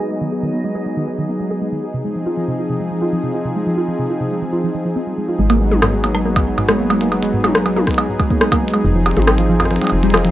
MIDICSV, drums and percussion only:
0, 0, Header, 1, 3, 480
1, 0, Start_track
1, 0, Key_signature, 5, "minor"
1, 0, Tempo, 431655
1, 235, Time_signature, 4, 2, 24, 8
1, 11466, End_track
2, 0, Start_track
2, 0, Title_t, "Percussion blips"
2, 6115, Note_on_c, 9, 60, 57
2, 6226, Note_off_c, 9, 60, 0
2, 6474, Note_on_c, 9, 60, 79
2, 6585, Note_off_c, 9, 60, 0
2, 6715, Note_on_c, 9, 60, 57
2, 6826, Note_off_c, 9, 60, 0
2, 7074, Note_on_c, 9, 60, 82
2, 7186, Note_off_c, 9, 60, 0
2, 7315, Note_on_c, 9, 60, 54
2, 7426, Note_off_c, 9, 60, 0
2, 7675, Note_on_c, 9, 60, 81
2, 7786, Note_off_c, 9, 60, 0
2, 7915, Note_on_c, 9, 60, 52
2, 8027, Note_off_c, 9, 60, 0
2, 8274, Note_on_c, 9, 60, 77
2, 8385, Note_off_c, 9, 60, 0
2, 8514, Note_on_c, 9, 60, 55
2, 8626, Note_off_c, 9, 60, 0
2, 8873, Note_on_c, 9, 60, 84
2, 8984, Note_off_c, 9, 60, 0
2, 9113, Note_on_c, 9, 60, 53
2, 9224, Note_off_c, 9, 60, 0
2, 9474, Note_on_c, 9, 60, 84
2, 9585, Note_off_c, 9, 60, 0
2, 9714, Note_on_c, 9, 60, 52
2, 9825, Note_off_c, 9, 60, 0
2, 10074, Note_on_c, 9, 60, 77
2, 10185, Note_off_c, 9, 60, 0
2, 10313, Note_on_c, 9, 60, 50
2, 10424, Note_off_c, 9, 60, 0
2, 10674, Note_on_c, 9, 60, 74
2, 10785, Note_off_c, 9, 60, 0
2, 10915, Note_on_c, 9, 60, 24
2, 10945, Note_off_c, 9, 60, 0
2, 10945, Note_on_c, 9, 60, 30
2, 10975, Note_off_c, 9, 60, 0
2, 10975, Note_on_c, 9, 60, 36
2, 11004, Note_off_c, 9, 60, 0
2, 11004, Note_on_c, 9, 60, 42
2, 11116, Note_off_c, 9, 60, 0
2, 11274, Note_on_c, 9, 60, 75
2, 11385, Note_off_c, 9, 60, 0
2, 11466, End_track
3, 0, Start_track
3, 0, Title_t, "Drums"
3, 6115, Note_on_c, 9, 42, 85
3, 6226, Note_off_c, 9, 42, 0
3, 6355, Note_on_c, 9, 48, 82
3, 6466, Note_off_c, 9, 48, 0
3, 6474, Note_on_c, 9, 37, 115
3, 6585, Note_off_c, 9, 37, 0
3, 6715, Note_on_c, 9, 42, 58
3, 6826, Note_off_c, 9, 42, 0
3, 6835, Note_on_c, 9, 37, 59
3, 6946, Note_off_c, 9, 37, 0
3, 7074, Note_on_c, 9, 36, 120
3, 7074, Note_on_c, 9, 42, 86
3, 7186, Note_off_c, 9, 36, 0
3, 7186, Note_off_c, 9, 42, 0
3, 7434, Note_on_c, 9, 37, 121
3, 7434, Note_on_c, 9, 42, 97
3, 7545, Note_off_c, 9, 37, 0
3, 7545, Note_off_c, 9, 42, 0
3, 7795, Note_on_c, 9, 42, 80
3, 7906, Note_off_c, 9, 42, 0
3, 8035, Note_on_c, 9, 42, 99
3, 8147, Note_off_c, 9, 42, 0
3, 8274, Note_on_c, 9, 48, 80
3, 8385, Note_off_c, 9, 48, 0
3, 8395, Note_on_c, 9, 37, 114
3, 8395, Note_on_c, 9, 42, 56
3, 8506, Note_off_c, 9, 37, 0
3, 8506, Note_off_c, 9, 42, 0
3, 8634, Note_on_c, 9, 48, 82
3, 8745, Note_off_c, 9, 48, 0
3, 8753, Note_on_c, 9, 37, 65
3, 8753, Note_on_c, 9, 42, 81
3, 8754, Note_on_c, 9, 36, 90
3, 8794, Note_off_c, 9, 42, 0
3, 8794, Note_on_c, 9, 42, 64
3, 8833, Note_off_c, 9, 42, 0
3, 8833, Note_on_c, 9, 42, 52
3, 8864, Note_off_c, 9, 37, 0
3, 8865, Note_off_c, 9, 36, 0
3, 8944, Note_off_c, 9, 42, 0
3, 9114, Note_on_c, 9, 36, 106
3, 9225, Note_off_c, 9, 36, 0
3, 9234, Note_on_c, 9, 36, 113
3, 9345, Note_off_c, 9, 36, 0
3, 9353, Note_on_c, 9, 37, 127
3, 9464, Note_off_c, 9, 37, 0
3, 9474, Note_on_c, 9, 36, 110
3, 9474, Note_on_c, 9, 42, 85
3, 9585, Note_off_c, 9, 36, 0
3, 9585, Note_off_c, 9, 42, 0
3, 9654, Note_on_c, 9, 42, 93
3, 9765, Note_off_c, 9, 42, 0
3, 10074, Note_on_c, 9, 42, 23
3, 10134, Note_off_c, 9, 42, 0
3, 10134, Note_on_c, 9, 42, 31
3, 10194, Note_off_c, 9, 42, 0
3, 10194, Note_on_c, 9, 42, 39
3, 10194, Note_on_c, 9, 48, 80
3, 10253, Note_off_c, 9, 42, 0
3, 10253, Note_on_c, 9, 42, 45
3, 10305, Note_off_c, 9, 48, 0
3, 10313, Note_on_c, 9, 37, 124
3, 10364, Note_off_c, 9, 42, 0
3, 10424, Note_off_c, 9, 37, 0
3, 10433, Note_on_c, 9, 42, 81
3, 10544, Note_off_c, 9, 42, 0
3, 10674, Note_on_c, 9, 37, 58
3, 10734, Note_off_c, 9, 37, 0
3, 10734, Note_on_c, 9, 37, 52
3, 10794, Note_off_c, 9, 37, 0
3, 10794, Note_on_c, 9, 37, 44
3, 10794, Note_on_c, 9, 42, 43
3, 10854, Note_off_c, 9, 37, 0
3, 10854, Note_off_c, 9, 42, 0
3, 10854, Note_on_c, 9, 37, 36
3, 10854, Note_on_c, 9, 42, 54
3, 10915, Note_off_c, 9, 42, 0
3, 10915, Note_on_c, 9, 42, 67
3, 10965, Note_off_c, 9, 37, 0
3, 10975, Note_off_c, 9, 42, 0
3, 10975, Note_on_c, 9, 42, 80
3, 11086, Note_off_c, 9, 42, 0
3, 11154, Note_on_c, 9, 42, 73
3, 11234, Note_off_c, 9, 42, 0
3, 11234, Note_on_c, 9, 42, 60
3, 11274, Note_on_c, 9, 37, 123
3, 11315, Note_off_c, 9, 42, 0
3, 11315, Note_on_c, 9, 42, 50
3, 11385, Note_off_c, 9, 37, 0
3, 11394, Note_off_c, 9, 42, 0
3, 11394, Note_on_c, 9, 42, 99
3, 11466, Note_off_c, 9, 42, 0
3, 11466, End_track
0, 0, End_of_file